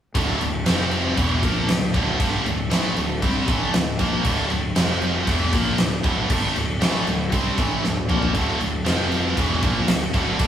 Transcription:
0.15 fingered electric bass D1, distorted electric guitar D2 A2 D3, tonewheel organ D4 A4 E5, kick, crash
0.41 fingered electric bass D1, distorted electric guitar D2 A2, crash
0.66 fingered electric bass F1, distorted electric guitar F2 C3 F3, tonewheel organ F4 C5 G5, snare, crash
0.91 crash
1.17 fingered electric bass E1, distorted electric guitar E2 B2 E3, tonewheel organ D4 A4 E5, kick, crash
1.42 fingered electric bass A#1, distorted electric guitar A#2 F3 A#3, kick, crash
1.68 fingered electric bass D1, distorted electric guitar D2 A2, snare, crash
1.94 fingered electric bass D1, distorted electric guitar D2 A2 D3, kick, crash
2.19 fingered electric bass G1, distorted electric guitar G2 D3 G3, kick, crash
2.45 fingered electric bass D1, distorted electric guitar D2 A2, crash
2.70 fingered electric bass A1, distorted electric guitar A2 E3 A3, snare, crash
2.96 fingered electric bass D1, distorted electric guitar D2 A2, crash
3.22 fingered electric bass C2, distorted electric guitar C3 G3 C4, tonewheel organ G4, kick, crash
3.48 fingered electric bass A1, distorted electric guitar A2 E3 A3, kick, crash
3.73 fingered electric bass D1, distorted electric guitar D2 A2, snare, crash
3.99 fingered electric bass A#1, distorted electric guitar A#2 F3 A#3, kick, crash
4.24 fingered electric bass D1, distorted electric guitar D2 A2 D3, kick, crash
4.50 fingered electric bass D1, distorted electric guitar D2 A2, crash
4.75 fingered electric bass F1, distorted electric guitar F2 C3 F3, tonewheel organ F4 C5 G5, snare, crash
5.02 crash
5.27 fingered electric bass E1, distorted electric guitar E2 B2 E3, tonewheel organ D4 A4 E5, kick, crash
5.52 fingered electric bass A#1, distorted electric guitar A#2 F3 A#3, kick, crash
5.78 fingered electric bass D1, distorted electric guitar D2 A2, snare, crash
6.04 fingered electric bass D1, distorted electric guitar D2 A2 D3, kick, crash
6.30 fingered electric bass G1, distorted electric guitar G2 D3 G3, kick, crash
6.55 fingered electric bass D1, distorted electric guitar D2 A2, crash
6.80 fingered electric bass A1, distorted electric guitar A2 E3 A3, snare, crash
7.06 fingered electric bass D1, distorted electric guitar D2 A2, crash
7.32 fingered electric bass C2, distorted electric guitar C3 G3 C4, kick, crash
7.58 fingered electric bass A1, distorted electric guitar A2 E3 A3, kick, crash
7.83 fingered electric bass D1, distorted electric guitar D2 A2, snare
7.97 high tom
8.09 fingered electric bass A#1, distorted electric guitar A#2 F3 A#3, mid tom
8.22 floor tom
8.34 fingered electric bass D1, distorted electric guitar D2 A2 D3, kick, crash
8.60 fingered electric bass D1, distorted electric guitar D2 A2, crash
8.85 fingered electric bass F1, distorted electric guitar F2 C3 F3, tonewheel organ F4 C5 G5, snare, crash
9.12 crash
9.37 fingered electric bass E1, distorted electric guitar E2 B2 E3, tonewheel organ D4 A4 E5, kick, crash
9.62 fingered electric bass A#1, distorted electric guitar A#2 F3 A#3, kick, crash
9.88 fingered electric bass D1, distorted electric guitar D2 A2, snare, crash
10.13 fingered electric bass D1, distorted electric guitar D2 A2 D3, kick, crash
10.39 fingered electric bass G1, distorted electric guitar G2 D3 G3, kick, crash

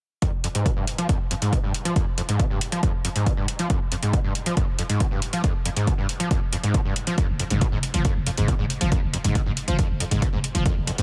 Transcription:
0.22 acid bass F2, kick, closed hi-hat
0.44 acid bass F2, closed hi-hat
0.55 acid bass G#2, closed hi-hat
0.66 acid bass C3, kick, closed hi-hat
0.76 acid bass G2
0.87 closed hi-hat
0.98 acid bass F3, closed hi-hat
1.09 acid bass F2, kick, closed hi-hat
1.31 acid bass F2, closed hi-hat
1.42 acid bass G#2, closed hi-hat
1.53 acid bass C3, kick, closed hi-hat
1.64 acid bass G2
1.74 closed hi-hat
1.85 acid bass F3, closed hi-hat
1.96 acid bass F2, kick, closed hi-hat
2.18 acid bass F2, closed hi-hat
2.29 acid bass G#2, closed hi-hat
2.39 acid bass C3, kick, closed hi-hat
2.50 acid bass G2
2.61 closed hi-hat
2.72 acid bass F3, closed hi-hat
2.83 acid bass F2, kick, closed hi-hat
3.05 acid bass F2, closed hi-hat
3.16 acid bass G#2, closed hi-hat
3.26 acid bass C3, kick, closed hi-hat
3.37 acid bass G2
3.48 closed hi-hat
3.59 acid bass F3, closed hi-hat
3.70 acid bass F2, kick, closed hi-hat
3.92 acid bass F2, closed hi-hat
4.03 acid bass G#2, closed hi-hat
4.13 acid bass C3, kick, closed hi-hat
4.24 acid bass G2
4.35 closed hi-hat
4.46 acid bass F3, closed hi-hat
4.57 acid bass F2, kick, closed hi-hat
4.79 acid bass F2, closed hi-hat
4.89 acid bass G#2, closed hi-hat
5.00 acid bass C3, kick, closed hi-hat
5.11 acid bass G2
5.22 closed hi-hat
5.33 acid bass F3, closed hi-hat
5.44 acid bass F2, kick, closed hi-hat
5.65 acid bass F2, closed hi-hat
5.76 acid bass G#2, closed hi-hat
5.87 acid bass C3, kick, closed hi-hat
5.98 acid bass G2
6.09 closed hi-hat
6.20 acid bass F3, closed hi-hat
6.31 acid bass F2, kick, closed hi-hat
6.52 acid bass F2, closed hi-hat
6.63 acid bass G#2, closed hi-hat
6.74 acid bass C3, kick, closed hi-hat
6.85 acid bass G2
6.96 closed hi-hat
7.07 acid bass F3, closed hi-hat
7.18 acid bass F2, kick, closed hi-hat
7.29 808-style bass F1
7.40 acid bass F2, closed hi-hat
7.50 808-style bass F1, acid bass G#2, closed hi-hat
7.61 acid bass C3, kick, closed hi-hat
7.72 808-style bass F1, acid bass G#2
7.83 closed hi-hat
7.94 808-style bass F1, acid bass F3, closed hi-hat
8.05 acid bass F2, kick, closed hi-hat
8.16 808-style bass F1
8.26 acid bass F2, closed hi-hat
8.37 808-style bass F1, acid bass G#2, closed hi-hat
8.48 acid bass C3, kick, closed hi-hat
8.59 808-style bass F1, acid bass G#2
8.70 closed hi-hat
8.81 808-style bass F1, acid bass F3, closed hi-hat
8.92 acid bass F2, kick, closed hi-hat
9.03 808-style bass F1
9.13 acid bass F2, closed hi-hat
9.24 808-style bass F1, acid bass G#2, closed hi-hat
9.35 acid bass C3, kick, closed hi-hat
9.46 808-style bass F1, acid bass G#2
9.57 closed hi-hat
9.68 808-style bass F1, acid bass F3, closed hi-hat
9.79 acid bass F2, kick, closed hi-hat
9.90 808-style bass F1
10.00 acid bass F2, closed hi-hat
10.11 808-style bass F1, acid bass G#2, closed hi-hat
10.22 acid bass C3, kick, closed hi-hat
10.33 808-style bass F1, acid bass G#2
10.44 closed hi-hat
10.55 808-style bass F1, acid bass F3, closed hi-hat
10.65 acid bass F2, kick, closed hi-hat, riser
10.77 808-style bass F1
10.87 acid bass F2, closed hi-hat
10.98 808-style bass F1, acid bass G#2, closed hi-hat

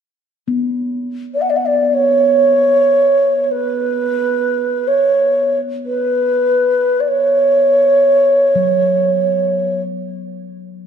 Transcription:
0.48 singing bowl B3
1.34 xiao D5
1.41 xiao F#5
1.50 xiao D5
1.56 xiao F#5
1.66 xiao D5
1.85 xiao D5
1.94 xiao C#5
3.44 xiao C#5
3.51 xiao B4
4.88 xiao C#5
5.86 xiao B4
7.00 xiao D5
7.08 xiao C#5
8.55 singing bowl F#3

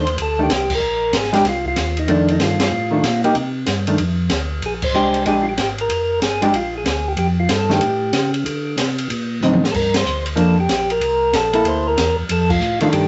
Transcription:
Already playing: tonewheel organ D#2 C5
0.07 ride
0.18 tonewheel organ D2 A4, kick, ride
0.39 hollow-body jazz guitar D#3 A3 D4, tonewheel organ G4
0.49 tonewheel organ C2, kick, snare, hi-hat pedal, ride
0.55 tonewheel organ G4
0.70 kick, crash
0.75 tonewheel organ A#4
0.80 tonewheel organ A#1
1.13 tonewheel organ G#1, kick, snare, hi-hat pedal, ride
1.18 tonewheel organ G#4
1.24 snare
1.33 hollow-body jazz guitar G#3 D4 G4, snare, ride
1.37 tonewheel organ G4
1.45 tonewheel organ C2, kick, snare, ride
1.49 tonewheel organ F4
1.65 tonewheel organ F4, kick
1.76 tonewheel organ D#2, snare, hi-hat pedal, ride
1.97 tonewheel organ D#4, ride
2.08 tonewheel organ F2 D4, hollow-body jazz guitar D#3 A3 D4, kick, ride
2.28 tonewheel organ D#4, ride
2.40 tonewheel organ G2 F4, kick, snare, hi-hat pedal, ride
2.60 snare, ride
2.64 tonewheel organ F4
2.71 tonewheel organ A2
2.91 hollow-body jazz guitar D#3 A3 D4
3.03 tonewheel organ A#2, kick, snare, hi-hat pedal, ride
3.24 hollow-body jazz guitar A#3 D#4 G4, ride
3.35 tonewheel organ C3, kick, ride
3.66 tonewheel organ G2, kick, snare, hi-hat pedal, ride
3.87 hollow-body jazz guitar D#3 A3 D4, ride
3.98 tonewheel organ F2, kick, ride
4.30 tonewheel organ D2, kick, snare, hi-hat pedal, ride
4.62 tonewheel organ A#1 G#4, kick, ride
4.82 tonewheel organ C5, kick, crash
4.94 tonewheel organ C2, hollow-body jazz guitar G#3 D4 G4, hi-hat pedal
5.14 ride
5.26 tonewheel organ A#1 G#4, hollow-body jazz guitar G#3 D4 G4, kick, ride
5.42 tonewheel organ F4
5.49 tonewheel organ G4
5.58 tonewheel organ G#1 G4, kick, snare, hi-hat pedal, ride
5.78 tonewheel organ A#4, ride
5.89 tonewheel organ F1, kick, ride
6.21 tonewheel organ G1 G#4, kick, snare, hi-hat pedal, ride
6.42 hollow-body jazz guitar G#3 D4 G4, tonewheel organ G4, ride
6.53 tonewheel organ A#1 F4, kick, ride
6.77 tonewheel organ G#4
6.85 tonewheel organ D2, kick, snare, hi-hat pedal, ride
7.08 tonewheel organ G4
7.17 tonewheel organ F2 G4, kick, ride
7.40 tonewheel organ F4
7.49 tonewheel organ G2 A4, kick, snare, hi-hat pedal, ride
7.69 hollow-body jazz guitar D#3 A3 D4, tonewheel organ G4, snare
7.81 tonewheel organ A2, kick, ride
8.13 tonewheel organ C#3, kick, snare, hi-hat pedal, ride
8.34 ride
8.45 tonewheel organ D3, kick, ride
8.77 tonewheel organ C3, kick, snare, hi-hat pedal, ride
8.98 ride
9.10 tonewheel organ A#2, kick, ride
9.41 tonewheel organ A2, hollow-body jazz guitar D3 F#3 C4 D#4, hi-hat pedal
9.53 high tom
9.64 snare
9.72 tonewheel organ G2 A4, kick, crash
9.76 tonewheel organ A#4
9.94 tonewheel organ C5, snare, ride
10.06 tonewheel organ D2, hi-hat pedal
10.26 ride
10.36 tonewheel organ F2, hollow-body jazz guitar F3 A#3 D4, kick, ride
10.41 tonewheel organ A4
10.60 tonewheel organ G4
10.69 tonewheel organ A#1 G4, kick, snare, hi-hat pedal, ride
10.90 tonewheel organ A#4, ride
11.01 tonewheel organ C2, kick, ride
11.33 tonewheel organ A#1 A4, kick, snare, hi-hat pedal, ride
11.53 hollow-body jazz guitar A#3 E4 A4, ride
11.65 tonewheel organ D2 C5, kick, ride
11.87 tonewheel organ A#4
11.97 tonewheel organ E2, kick, snare, hi-hat pedal, ride
12.17 tonewheel organ E2
12.29 tonewheel organ F2 A4, kick, ride
12.50 tonewheel organ F4, kick, crash
12.61 tonewheel organ A2, hi-hat pedal
12.80 tonewheel organ A2 F4, hollow-body jazz guitar D#3 A3 D4, ride
12.93 tonewheel organ G2 G4, kick, ride

